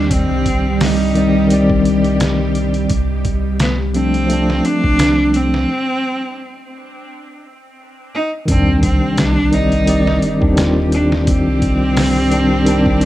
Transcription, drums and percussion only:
0.11 kick, closed hi-hat
0.46 kick, closed hi-hat
0.81 snare, open hi-hat
1.15 closed hi-hat
1.50 closed hi-hat
1.70 kick
1.85 closed hi-hat
2.04 closed hi-hat
2.20 snare, closed hi-hat
2.55 closed hi-hat
2.74 closed hi-hat
2.90 kick, closed hi-hat
3.25 kick, closed hi-hat
3.60 snare, closed hi-hat
3.94 closed hi-hat
4.14 closed hi-hat
4.30 closed hi-hat
4.50 snare
4.65 closed hi-hat
4.84 kick
4.99 snare, closed hi-hat
5.34 closed hi-hat
5.54 snare
8.48 kick, closed hi-hat
8.83 kick, closed hi-hat
9.18 snare, closed hi-hat
9.53 closed hi-hat
9.72 closed hi-hat
9.87 closed hi-hat
10.07 snare
10.22 closed hi-hat
10.42 kick
10.57 snare, closed hi-hat
10.92 closed hi-hat
11.12 snare
11.27 kick, closed hi-hat
11.62 kick, closed hi-hat
11.97 snare, open hi-hat
12.32 closed hi-hat
12.66 closed hi-hat
12.86 kick
13.01 closed hi-hat

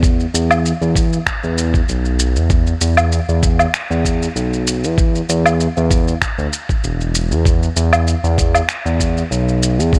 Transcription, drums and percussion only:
0.03 kick, shaker
0.20 shaker
0.35 shaker
0.51 low woodblock, shaker
0.66 shaker
0.82 shaker
0.96 kick, shaker
1.13 shaker
1.26 finger snap, kick, shaker
1.44 shaker
1.58 shaker
1.74 kick, shaker
1.89 shaker
2.05 shaker
2.19 shaker
2.36 shaker
2.50 kick, shaker
2.67 shaker
2.81 shaker
2.97 low woodblock, shaker
3.12 shaker
3.29 shaker
3.43 kick, shaker
3.59 low woodblock, shaker
3.74 finger snap, shaker
3.91 shaker
4.05 kick, shaker
4.22 shaker
4.36 shaker
4.53 shaker
4.67 shaker
4.84 shaker
4.98 kick, shaker
5.15 shaker
5.29 shaker
5.46 low woodblock, shaker
5.60 shaker
5.77 shaker
5.91 kick, shaker
6.08 shaker
6.22 finger snap, kick, shaker
6.39 shaker
6.53 shaker
6.69 kick, shaker
6.84 shaker
7.01 shaker
7.15 shaker
7.32 shaker
7.45 kick, shaker
7.63 shaker
7.77 shaker
7.93 low woodblock, shaker
8.07 shaker
8.24 shaker
8.38 kick, shaker
8.55 low woodblock, shaker
8.69 finger snap, shaker
8.86 shaker
9.00 kick, shaker
9.17 shaker
9.32 shaker
9.49 shaker
9.63 shaker
9.80 shaker
9.93 kick, shaker

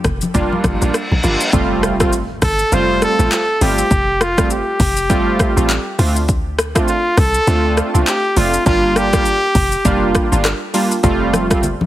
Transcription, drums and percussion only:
0.04 kick, cross-stick, low conga, shaker
0.21 high conga, shaker
0.34 kick, shaker
0.53 high conga
0.64 kick, cross-stick, high conga, shaker
0.82 shaker
0.94 cross-stick, shaker
1.12 high conga
1.24 high conga, shaker
1.41 shaker
1.53 kick, shaker
1.83 cross-stick, shaker
2.00 kick, cross-stick, shaker
2.13 shaker
2.42 kick, cross-stick, open hi-hat, shaker
2.59 shaker
2.72 shaker
3.02 cross-stick, shaker
3.20 shaker
3.32 clap, shaker
3.61 open hi-hat, shaker
3.78 shaker
3.91 kick, shaker
4.21 cross-stick, shaker
4.38 kick, cross-stick, shaker
4.50 shaker
4.80 kick, open hi-hat, shaker
4.97 shaker
5.10 kick, shaker
5.39 kick, cross-stick, shaker
5.57 shaker
5.70 clap, shaker
5.99 open hi-hat, shaker
6.16 shaker
6.29 kick, shaker
6.59 cross-stick, shaker
6.76 kick, cross-stick, shaker
6.88 shaker
7.18 kick, cross-stick, open hi-hat, shaker
7.34 shaker
7.48 shaker
7.77 cross-stick, shaker
7.95 shaker
8.07 clap, shaker
8.37 open hi-hat, shaker
8.54 shaker
8.66 kick, shaker
8.96 cross-stick, shaker
9.13 kick, cross-stick, shaker
9.26 shaker
9.55 kick, open hi-hat, shaker
9.72 shaker
9.85 kick, shaker
10.15 kick, cross-stick, shaker
10.33 shaker
10.45 cross-stick, clap, shaker
10.74 open hi-hat, shaker
10.91 shaker
11.04 kick, shaker
11.33 cross-stick, high conga, shaker
11.51 kick, cross-stick, shaker
11.63 low conga, shaker
11.81 high conga

